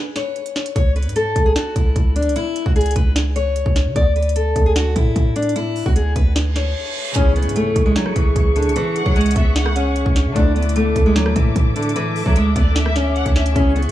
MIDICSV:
0, 0, Header, 1, 9, 480
1, 0, Start_track
1, 0, Tempo, 400000
1, 910, Time_signature, 4, 2, 24, 8
1, 16698, End_track
2, 0, Start_track
2, 0, Title_t, "String section"
2, 0, Program_c, 0, 48
2, 8590, Note_on_c, 0, 68, 82
2, 8590, Note_on_c, 0, 76, 73
2, 8590, Note_on_c, 0, 85, 88
2, 12392, Note_off_c, 0, 68, 0
2, 12392, Note_off_c, 0, 85, 0
2, 12430, Note_on_c, 0, 69, 81
2, 12430, Note_on_c, 0, 86, 91
2, 16232, Note_off_c, 0, 69, 0
2, 16232, Note_off_c, 0, 86, 0
2, 16270, Note_on_c, 0, 68, 81
2, 16270, Note_on_c, 0, 85, 88
2, 16698, Note_off_c, 0, 68, 0
2, 16698, Note_off_c, 0, 76, 0
2, 16698, Note_off_c, 0, 85, 0
2, 16698, End_track
3, 0, Start_track
3, 0, Title_t, "Violin section"
3, 0, Program_c, 1, 48
3, 10750, Note_on_c, 1, 78, 89
3, 11201, Note_off_c, 1, 78, 0
3, 11230, Note_on_c, 1, 76, 87
3, 11458, Note_off_c, 1, 76, 0
3, 11470, Note_on_c, 1, 78, 82
3, 11921, Note_off_c, 1, 78, 0
3, 14590, Note_on_c, 1, 76, 74
3, 15041, Note_off_c, 1, 76, 0
3, 15070, Note_on_c, 1, 74, 77
3, 15298, Note_off_c, 1, 74, 0
3, 15310, Note_on_c, 1, 76, 95
3, 15761, Note_off_c, 1, 76, 0
3, 15790, Note_on_c, 1, 78, 83
3, 16018, Note_off_c, 1, 78, 0
3, 16030, Note_on_c, 1, 76, 77
3, 16258, Note_off_c, 1, 76, 0
3, 16698, End_track
4, 0, Start_track
4, 0, Title_t, "Harp"
4, 0, Program_c, 2, 46
4, 8544, Note_on_c, 2, 49, 67
4, 8574, Note_on_c, 2, 61, 65
4, 8605, Note_on_c, 2, 64, 64
4, 8635, Note_on_c, 2, 68, 78
4, 12374, Note_off_c, 2, 61, 0
4, 12384, Note_on_c, 2, 50, 67
4, 12389, Note_off_c, 2, 64, 0
4, 12405, Note_off_c, 2, 68, 0
4, 12415, Note_on_c, 2, 57, 67
4, 12445, Note_on_c, 2, 64, 61
4, 12476, Note_on_c, 2, 69, 77
4, 12490, Note_off_c, 2, 49, 0
4, 16223, Note_on_c, 2, 49, 69
4, 16229, Note_off_c, 2, 64, 0
4, 16245, Note_off_c, 2, 69, 0
4, 16254, Note_on_c, 2, 61, 64
4, 16284, Note_on_c, 2, 64, 63
4, 16315, Note_on_c, 2, 68, 77
4, 16330, Note_off_c, 2, 50, 0
4, 16387, Note_off_c, 2, 57, 0
4, 16698, Note_off_c, 2, 49, 0
4, 16698, Note_off_c, 2, 61, 0
4, 16698, Note_off_c, 2, 64, 0
4, 16698, Note_off_c, 2, 68, 0
4, 16698, End_track
5, 0, Start_track
5, 0, Title_t, "Steel-string acoustic guitar"
5, 0, Program_c, 3, 25
5, 191, Note_on_c, 3, 73, 69
5, 867, Note_off_c, 3, 73, 0
5, 910, Note_on_c, 3, 73, 92
5, 1115, Note_off_c, 3, 73, 0
5, 1151, Note_on_c, 3, 71, 80
5, 1356, Note_off_c, 3, 71, 0
5, 1391, Note_on_c, 3, 69, 85
5, 1729, Note_off_c, 3, 69, 0
5, 1748, Note_on_c, 3, 68, 82
5, 1851, Note_off_c, 3, 68, 0
5, 1871, Note_on_c, 3, 66, 84
5, 2075, Note_off_c, 3, 66, 0
5, 2111, Note_on_c, 3, 64, 80
5, 2562, Note_off_c, 3, 64, 0
5, 2589, Note_on_c, 3, 62, 68
5, 2794, Note_off_c, 3, 62, 0
5, 2832, Note_on_c, 3, 64, 102
5, 3169, Note_off_c, 3, 64, 0
5, 3189, Note_on_c, 3, 66, 70
5, 3292, Note_off_c, 3, 66, 0
5, 3308, Note_on_c, 3, 68, 88
5, 3514, Note_off_c, 3, 68, 0
5, 3548, Note_on_c, 3, 71, 80
5, 3754, Note_off_c, 3, 71, 0
5, 4031, Note_on_c, 3, 73, 77
5, 4707, Note_off_c, 3, 73, 0
5, 4750, Note_on_c, 3, 74, 89
5, 4955, Note_off_c, 3, 74, 0
5, 4991, Note_on_c, 3, 71, 76
5, 5195, Note_off_c, 3, 71, 0
5, 5230, Note_on_c, 3, 69, 83
5, 5568, Note_off_c, 3, 69, 0
5, 5592, Note_on_c, 3, 68, 77
5, 5693, Note_off_c, 3, 68, 0
5, 5712, Note_on_c, 3, 66, 82
5, 5916, Note_off_c, 3, 66, 0
5, 5949, Note_on_c, 3, 64, 86
5, 6401, Note_off_c, 3, 64, 0
5, 6431, Note_on_c, 3, 62, 75
5, 6635, Note_off_c, 3, 62, 0
5, 6670, Note_on_c, 3, 64, 105
5, 7008, Note_off_c, 3, 64, 0
5, 7030, Note_on_c, 3, 66, 79
5, 7133, Note_off_c, 3, 66, 0
5, 7150, Note_on_c, 3, 68, 88
5, 7355, Note_off_c, 3, 68, 0
5, 7389, Note_on_c, 3, 71, 76
5, 7594, Note_off_c, 3, 71, 0
5, 7871, Note_on_c, 3, 73, 71
5, 8547, Note_off_c, 3, 73, 0
5, 8589, Note_on_c, 3, 61, 99
5, 8794, Note_off_c, 3, 61, 0
5, 8831, Note_on_c, 3, 59, 84
5, 9035, Note_off_c, 3, 59, 0
5, 9071, Note_on_c, 3, 57, 91
5, 9409, Note_off_c, 3, 57, 0
5, 9428, Note_on_c, 3, 56, 81
5, 9531, Note_off_c, 3, 56, 0
5, 9551, Note_on_c, 3, 54, 86
5, 9755, Note_off_c, 3, 54, 0
5, 9791, Note_on_c, 3, 52, 83
5, 10242, Note_off_c, 3, 52, 0
5, 10270, Note_on_c, 3, 50, 71
5, 10475, Note_off_c, 3, 50, 0
5, 10513, Note_on_c, 3, 52, 106
5, 10850, Note_off_c, 3, 52, 0
5, 10870, Note_on_c, 3, 54, 71
5, 10972, Note_off_c, 3, 54, 0
5, 10990, Note_on_c, 3, 56, 90
5, 11195, Note_off_c, 3, 56, 0
5, 11229, Note_on_c, 3, 59, 79
5, 11434, Note_off_c, 3, 59, 0
5, 11712, Note_on_c, 3, 61, 78
5, 12387, Note_off_c, 3, 61, 0
5, 12430, Note_on_c, 3, 62, 94
5, 12635, Note_off_c, 3, 62, 0
5, 12671, Note_on_c, 3, 59, 74
5, 12875, Note_off_c, 3, 59, 0
5, 12910, Note_on_c, 3, 57, 87
5, 13248, Note_off_c, 3, 57, 0
5, 13271, Note_on_c, 3, 56, 80
5, 13373, Note_off_c, 3, 56, 0
5, 13391, Note_on_c, 3, 54, 89
5, 13596, Note_off_c, 3, 54, 0
5, 13629, Note_on_c, 3, 52, 88
5, 14081, Note_off_c, 3, 52, 0
5, 14111, Note_on_c, 3, 50, 76
5, 14315, Note_off_c, 3, 50, 0
5, 14350, Note_on_c, 3, 52, 109
5, 14688, Note_off_c, 3, 52, 0
5, 14711, Note_on_c, 3, 54, 77
5, 14813, Note_off_c, 3, 54, 0
5, 14831, Note_on_c, 3, 56, 91
5, 15035, Note_off_c, 3, 56, 0
5, 15069, Note_on_c, 3, 59, 79
5, 15274, Note_off_c, 3, 59, 0
5, 15551, Note_on_c, 3, 61, 74
5, 16227, Note_off_c, 3, 61, 0
5, 16270, Note_on_c, 3, 61, 95
5, 16475, Note_off_c, 3, 61, 0
5, 16512, Note_on_c, 3, 59, 84
5, 16698, Note_off_c, 3, 59, 0
5, 16698, End_track
6, 0, Start_track
6, 0, Title_t, "808-style bass"
6, 0, Program_c, 4, 38
6, 910, Note_on_c, 4, 37, 107
6, 1270, Note_on_c, 4, 44, 94
6, 1288, Note_off_c, 4, 37, 0
6, 1612, Note_off_c, 4, 44, 0
6, 1630, Note_on_c, 4, 37, 104
6, 1860, Note_off_c, 4, 37, 0
6, 2110, Note_on_c, 4, 37, 100
6, 2341, Note_off_c, 4, 37, 0
6, 2350, Note_on_c, 4, 37, 106
6, 2590, Note_on_c, 4, 38, 99
6, 2608, Note_off_c, 4, 37, 0
6, 2709, Note_on_c, 4, 37, 97
6, 2727, Note_off_c, 4, 38, 0
6, 2824, Note_off_c, 4, 37, 0
6, 3191, Note_on_c, 4, 37, 95
6, 3536, Note_off_c, 4, 37, 0
6, 3550, Note_on_c, 4, 37, 106
6, 4356, Note_off_c, 4, 37, 0
6, 4391, Note_on_c, 4, 37, 105
6, 4630, Note_on_c, 4, 49, 97
6, 4648, Note_off_c, 4, 37, 0
6, 4744, Note_off_c, 4, 49, 0
6, 4750, Note_on_c, 4, 38, 112
6, 5441, Note_off_c, 4, 38, 0
6, 5470, Note_on_c, 4, 38, 109
6, 5931, Note_off_c, 4, 38, 0
6, 5951, Note_on_c, 4, 45, 101
6, 6181, Note_off_c, 4, 45, 0
6, 6190, Note_on_c, 4, 45, 105
6, 6996, Note_off_c, 4, 45, 0
6, 7031, Note_on_c, 4, 38, 101
6, 7376, Note_off_c, 4, 38, 0
6, 7390, Note_on_c, 4, 38, 107
6, 8081, Note_off_c, 4, 38, 0
6, 8590, Note_on_c, 4, 37, 107
6, 8950, Note_on_c, 4, 44, 98
6, 8968, Note_off_c, 4, 37, 0
6, 9292, Note_off_c, 4, 44, 0
6, 9310, Note_on_c, 4, 37, 109
6, 9540, Note_off_c, 4, 37, 0
6, 9791, Note_on_c, 4, 37, 104
6, 10021, Note_off_c, 4, 37, 0
6, 10030, Note_on_c, 4, 37, 111
6, 10270, Note_on_c, 4, 38, 100
6, 10288, Note_off_c, 4, 37, 0
6, 10390, Note_on_c, 4, 37, 98
6, 10408, Note_off_c, 4, 38, 0
6, 10504, Note_off_c, 4, 37, 0
6, 10871, Note_on_c, 4, 37, 98
6, 11216, Note_off_c, 4, 37, 0
6, 11230, Note_on_c, 4, 37, 108
6, 12036, Note_off_c, 4, 37, 0
6, 12071, Note_on_c, 4, 37, 107
6, 12310, Note_on_c, 4, 49, 105
6, 12328, Note_off_c, 4, 37, 0
6, 12424, Note_off_c, 4, 49, 0
6, 12430, Note_on_c, 4, 38, 109
6, 13121, Note_off_c, 4, 38, 0
6, 13151, Note_on_c, 4, 38, 108
6, 13611, Note_off_c, 4, 38, 0
6, 13631, Note_on_c, 4, 45, 104
6, 13861, Note_off_c, 4, 45, 0
6, 13870, Note_on_c, 4, 45, 107
6, 14676, Note_off_c, 4, 45, 0
6, 14711, Note_on_c, 4, 38, 99
6, 15056, Note_off_c, 4, 38, 0
6, 15070, Note_on_c, 4, 38, 110
6, 15876, Note_off_c, 4, 38, 0
6, 15910, Note_on_c, 4, 38, 106
6, 16256, Note_off_c, 4, 38, 0
6, 16270, Note_on_c, 4, 37, 108
6, 16629, Note_on_c, 4, 44, 98
6, 16647, Note_off_c, 4, 37, 0
6, 16698, Note_off_c, 4, 44, 0
6, 16698, End_track
7, 0, Start_track
7, 0, Title_t, "Impact"
7, 0, Program_c, 5, 103
7, 8590, Note_on_c, 5, 60, 86
7, 10510, Note_off_c, 5, 60, 0
7, 16698, End_track
8, 0, Start_track
8, 0, Title_t, "Reverse cymbal"
8, 0, Program_c, 6, 119
8, 7630, Note_on_c, 6, 60, 87
8, 8590, Note_off_c, 6, 60, 0
8, 16698, End_track
9, 0, Start_track
9, 0, Title_t, "Drums"
9, 189, Note_on_c, 9, 38, 67
9, 190, Note_on_c, 9, 42, 73
9, 309, Note_off_c, 9, 38, 0
9, 310, Note_off_c, 9, 42, 0
9, 430, Note_on_c, 9, 42, 42
9, 550, Note_off_c, 9, 42, 0
9, 550, Note_on_c, 9, 42, 74
9, 670, Note_off_c, 9, 42, 0
9, 670, Note_on_c, 9, 42, 50
9, 671, Note_on_c, 9, 38, 87
9, 790, Note_off_c, 9, 42, 0
9, 790, Note_on_c, 9, 42, 82
9, 791, Note_off_c, 9, 38, 0
9, 910, Note_off_c, 9, 42, 0
9, 910, Note_on_c, 9, 36, 118
9, 910, Note_on_c, 9, 42, 71
9, 1030, Note_off_c, 9, 36, 0
9, 1030, Note_off_c, 9, 42, 0
9, 1150, Note_on_c, 9, 42, 41
9, 1230, Note_off_c, 9, 42, 0
9, 1230, Note_on_c, 9, 42, 57
9, 1310, Note_off_c, 9, 42, 0
9, 1310, Note_on_c, 9, 42, 72
9, 1390, Note_off_c, 9, 42, 0
9, 1390, Note_on_c, 9, 42, 79
9, 1510, Note_off_c, 9, 42, 0
9, 1630, Note_on_c, 9, 36, 97
9, 1630, Note_on_c, 9, 42, 70
9, 1750, Note_off_c, 9, 36, 0
9, 1750, Note_off_c, 9, 42, 0
9, 1870, Note_on_c, 9, 38, 115
9, 1870, Note_on_c, 9, 42, 77
9, 1990, Note_off_c, 9, 38, 0
9, 1990, Note_off_c, 9, 42, 0
9, 2110, Note_on_c, 9, 42, 72
9, 2111, Note_on_c, 9, 36, 94
9, 2230, Note_off_c, 9, 42, 0
9, 2231, Note_off_c, 9, 36, 0
9, 2350, Note_on_c, 9, 36, 94
9, 2350, Note_on_c, 9, 42, 74
9, 2470, Note_off_c, 9, 36, 0
9, 2470, Note_off_c, 9, 42, 0
9, 2590, Note_on_c, 9, 42, 66
9, 2670, Note_off_c, 9, 42, 0
9, 2670, Note_on_c, 9, 42, 66
9, 2750, Note_off_c, 9, 42, 0
9, 2750, Note_on_c, 9, 42, 68
9, 2830, Note_off_c, 9, 42, 0
9, 2830, Note_on_c, 9, 42, 73
9, 2950, Note_off_c, 9, 42, 0
9, 3070, Note_on_c, 9, 42, 73
9, 3190, Note_off_c, 9, 42, 0
9, 3191, Note_on_c, 9, 36, 94
9, 3310, Note_on_c, 9, 42, 49
9, 3311, Note_off_c, 9, 36, 0
9, 3370, Note_off_c, 9, 42, 0
9, 3370, Note_on_c, 9, 42, 58
9, 3430, Note_off_c, 9, 42, 0
9, 3430, Note_on_c, 9, 42, 69
9, 3490, Note_off_c, 9, 42, 0
9, 3490, Note_on_c, 9, 42, 79
9, 3550, Note_off_c, 9, 42, 0
9, 3550, Note_on_c, 9, 36, 91
9, 3550, Note_on_c, 9, 42, 71
9, 3670, Note_off_c, 9, 36, 0
9, 3670, Note_off_c, 9, 42, 0
9, 3790, Note_on_c, 9, 38, 117
9, 3790, Note_on_c, 9, 42, 79
9, 3910, Note_off_c, 9, 38, 0
9, 3910, Note_off_c, 9, 42, 0
9, 4030, Note_on_c, 9, 42, 74
9, 4150, Note_off_c, 9, 42, 0
9, 4270, Note_on_c, 9, 42, 71
9, 4390, Note_off_c, 9, 42, 0
9, 4390, Note_on_c, 9, 36, 93
9, 4510, Note_off_c, 9, 36, 0
9, 4510, Note_on_c, 9, 42, 75
9, 4511, Note_on_c, 9, 38, 85
9, 4630, Note_off_c, 9, 42, 0
9, 4631, Note_off_c, 9, 38, 0
9, 4750, Note_on_c, 9, 36, 113
9, 4750, Note_on_c, 9, 42, 68
9, 4870, Note_off_c, 9, 36, 0
9, 4870, Note_off_c, 9, 42, 0
9, 4990, Note_on_c, 9, 42, 43
9, 5070, Note_off_c, 9, 42, 0
9, 5070, Note_on_c, 9, 42, 57
9, 5150, Note_off_c, 9, 42, 0
9, 5150, Note_on_c, 9, 42, 71
9, 5230, Note_off_c, 9, 42, 0
9, 5230, Note_on_c, 9, 42, 81
9, 5350, Note_off_c, 9, 42, 0
9, 5470, Note_on_c, 9, 36, 89
9, 5470, Note_on_c, 9, 42, 69
9, 5590, Note_off_c, 9, 36, 0
9, 5590, Note_off_c, 9, 42, 0
9, 5710, Note_on_c, 9, 38, 115
9, 5710, Note_on_c, 9, 42, 80
9, 5830, Note_off_c, 9, 38, 0
9, 5830, Note_off_c, 9, 42, 0
9, 5950, Note_on_c, 9, 42, 72
9, 5951, Note_on_c, 9, 36, 95
9, 6070, Note_off_c, 9, 42, 0
9, 6071, Note_off_c, 9, 36, 0
9, 6190, Note_on_c, 9, 36, 91
9, 6190, Note_on_c, 9, 42, 74
9, 6310, Note_off_c, 9, 36, 0
9, 6310, Note_off_c, 9, 42, 0
9, 6430, Note_on_c, 9, 42, 67
9, 6510, Note_off_c, 9, 42, 0
9, 6510, Note_on_c, 9, 42, 65
9, 6590, Note_off_c, 9, 42, 0
9, 6590, Note_on_c, 9, 42, 67
9, 6670, Note_off_c, 9, 42, 0
9, 6670, Note_on_c, 9, 42, 71
9, 6790, Note_off_c, 9, 42, 0
9, 6910, Note_on_c, 9, 46, 76
9, 7030, Note_off_c, 9, 46, 0
9, 7031, Note_on_c, 9, 36, 97
9, 7150, Note_on_c, 9, 42, 77
9, 7151, Note_off_c, 9, 36, 0
9, 7270, Note_off_c, 9, 42, 0
9, 7390, Note_on_c, 9, 36, 92
9, 7390, Note_on_c, 9, 42, 69
9, 7510, Note_off_c, 9, 36, 0
9, 7510, Note_off_c, 9, 42, 0
9, 7630, Note_on_c, 9, 38, 114
9, 7630, Note_on_c, 9, 42, 78
9, 7750, Note_off_c, 9, 38, 0
9, 7750, Note_off_c, 9, 42, 0
9, 7869, Note_on_c, 9, 38, 66
9, 7870, Note_on_c, 9, 42, 72
9, 7989, Note_off_c, 9, 38, 0
9, 7990, Note_off_c, 9, 42, 0
9, 8590, Note_on_c, 9, 36, 117
9, 8590, Note_on_c, 9, 42, 74
9, 8710, Note_off_c, 9, 36, 0
9, 8710, Note_off_c, 9, 42, 0
9, 8830, Note_on_c, 9, 42, 42
9, 8910, Note_off_c, 9, 42, 0
9, 8910, Note_on_c, 9, 42, 57
9, 8990, Note_off_c, 9, 42, 0
9, 8990, Note_on_c, 9, 42, 73
9, 9070, Note_off_c, 9, 42, 0
9, 9070, Note_on_c, 9, 42, 79
9, 9190, Note_off_c, 9, 42, 0
9, 9310, Note_on_c, 9, 36, 95
9, 9310, Note_on_c, 9, 42, 70
9, 9430, Note_off_c, 9, 36, 0
9, 9430, Note_off_c, 9, 42, 0
9, 9549, Note_on_c, 9, 38, 116
9, 9550, Note_on_c, 9, 42, 83
9, 9669, Note_off_c, 9, 38, 0
9, 9669, Note_on_c, 9, 37, 95
9, 9670, Note_off_c, 9, 42, 0
9, 9789, Note_off_c, 9, 37, 0
9, 9790, Note_on_c, 9, 36, 97
9, 9790, Note_on_c, 9, 42, 74
9, 9910, Note_off_c, 9, 36, 0
9, 9910, Note_off_c, 9, 42, 0
9, 10030, Note_on_c, 9, 36, 94
9, 10030, Note_on_c, 9, 42, 77
9, 10150, Note_off_c, 9, 36, 0
9, 10150, Note_off_c, 9, 42, 0
9, 10270, Note_on_c, 9, 42, 67
9, 10350, Note_off_c, 9, 42, 0
9, 10350, Note_on_c, 9, 42, 68
9, 10430, Note_off_c, 9, 42, 0
9, 10430, Note_on_c, 9, 42, 68
9, 10510, Note_off_c, 9, 42, 0
9, 10510, Note_on_c, 9, 42, 71
9, 10630, Note_off_c, 9, 42, 0
9, 10750, Note_on_c, 9, 42, 77
9, 10870, Note_off_c, 9, 42, 0
9, 10871, Note_on_c, 9, 36, 96
9, 10989, Note_on_c, 9, 42, 50
9, 10991, Note_off_c, 9, 36, 0
9, 11050, Note_off_c, 9, 42, 0
9, 11050, Note_on_c, 9, 42, 59
9, 11109, Note_off_c, 9, 42, 0
9, 11109, Note_on_c, 9, 42, 69
9, 11169, Note_off_c, 9, 42, 0
9, 11169, Note_on_c, 9, 42, 84
9, 11230, Note_off_c, 9, 42, 0
9, 11230, Note_on_c, 9, 36, 98
9, 11230, Note_on_c, 9, 42, 70
9, 11350, Note_off_c, 9, 36, 0
9, 11350, Note_off_c, 9, 42, 0
9, 11469, Note_on_c, 9, 38, 115
9, 11470, Note_on_c, 9, 42, 83
9, 11589, Note_off_c, 9, 38, 0
9, 11589, Note_on_c, 9, 37, 98
9, 11590, Note_off_c, 9, 42, 0
9, 11709, Note_off_c, 9, 37, 0
9, 11710, Note_on_c, 9, 42, 77
9, 11830, Note_off_c, 9, 42, 0
9, 11950, Note_on_c, 9, 42, 69
9, 12070, Note_off_c, 9, 42, 0
9, 12071, Note_on_c, 9, 36, 90
9, 12190, Note_on_c, 9, 42, 82
9, 12191, Note_off_c, 9, 36, 0
9, 12191, Note_on_c, 9, 38, 90
9, 12310, Note_off_c, 9, 42, 0
9, 12311, Note_off_c, 9, 38, 0
9, 12430, Note_on_c, 9, 36, 117
9, 12430, Note_on_c, 9, 42, 71
9, 12550, Note_off_c, 9, 36, 0
9, 12550, Note_off_c, 9, 42, 0
9, 12670, Note_on_c, 9, 42, 45
9, 12750, Note_off_c, 9, 42, 0
9, 12750, Note_on_c, 9, 42, 60
9, 12830, Note_off_c, 9, 42, 0
9, 12830, Note_on_c, 9, 42, 74
9, 12910, Note_off_c, 9, 42, 0
9, 12910, Note_on_c, 9, 42, 81
9, 13030, Note_off_c, 9, 42, 0
9, 13150, Note_on_c, 9, 36, 98
9, 13150, Note_on_c, 9, 42, 69
9, 13270, Note_off_c, 9, 36, 0
9, 13270, Note_off_c, 9, 42, 0
9, 13390, Note_on_c, 9, 38, 118
9, 13390, Note_on_c, 9, 42, 82
9, 13509, Note_on_c, 9, 37, 97
9, 13510, Note_off_c, 9, 38, 0
9, 13510, Note_off_c, 9, 42, 0
9, 13629, Note_off_c, 9, 37, 0
9, 13630, Note_on_c, 9, 42, 73
9, 13631, Note_on_c, 9, 36, 98
9, 13750, Note_off_c, 9, 42, 0
9, 13751, Note_off_c, 9, 36, 0
9, 13870, Note_on_c, 9, 36, 99
9, 13870, Note_on_c, 9, 42, 78
9, 13990, Note_off_c, 9, 36, 0
9, 13990, Note_off_c, 9, 42, 0
9, 14110, Note_on_c, 9, 42, 66
9, 14190, Note_off_c, 9, 42, 0
9, 14190, Note_on_c, 9, 42, 68
9, 14270, Note_off_c, 9, 42, 0
9, 14270, Note_on_c, 9, 42, 69
9, 14350, Note_off_c, 9, 42, 0
9, 14350, Note_on_c, 9, 42, 74
9, 14470, Note_off_c, 9, 42, 0
9, 14590, Note_on_c, 9, 46, 75
9, 14710, Note_off_c, 9, 46, 0
9, 14711, Note_on_c, 9, 36, 100
9, 14830, Note_on_c, 9, 42, 79
9, 14831, Note_off_c, 9, 36, 0
9, 14950, Note_off_c, 9, 42, 0
9, 15070, Note_on_c, 9, 36, 94
9, 15070, Note_on_c, 9, 42, 72
9, 15190, Note_off_c, 9, 36, 0
9, 15190, Note_off_c, 9, 42, 0
9, 15309, Note_on_c, 9, 38, 113
9, 15309, Note_on_c, 9, 42, 84
9, 15429, Note_off_c, 9, 38, 0
9, 15429, Note_off_c, 9, 42, 0
9, 15429, Note_on_c, 9, 37, 97
9, 15549, Note_off_c, 9, 37, 0
9, 15549, Note_on_c, 9, 38, 68
9, 15550, Note_on_c, 9, 42, 75
9, 15669, Note_off_c, 9, 38, 0
9, 15670, Note_off_c, 9, 42, 0
9, 15790, Note_on_c, 9, 42, 44
9, 15910, Note_off_c, 9, 42, 0
9, 15910, Note_on_c, 9, 36, 91
9, 15910, Note_on_c, 9, 42, 74
9, 16030, Note_off_c, 9, 36, 0
9, 16030, Note_off_c, 9, 42, 0
9, 16030, Note_on_c, 9, 38, 89
9, 16030, Note_on_c, 9, 42, 49
9, 16150, Note_off_c, 9, 38, 0
9, 16150, Note_off_c, 9, 42, 0
9, 16150, Note_on_c, 9, 42, 85
9, 16270, Note_off_c, 9, 42, 0
9, 16270, Note_on_c, 9, 36, 119
9, 16270, Note_on_c, 9, 42, 73
9, 16390, Note_off_c, 9, 36, 0
9, 16390, Note_off_c, 9, 42, 0
9, 16510, Note_on_c, 9, 42, 44
9, 16590, Note_off_c, 9, 42, 0
9, 16590, Note_on_c, 9, 42, 58
9, 16698, Note_off_c, 9, 42, 0
9, 16698, End_track
0, 0, End_of_file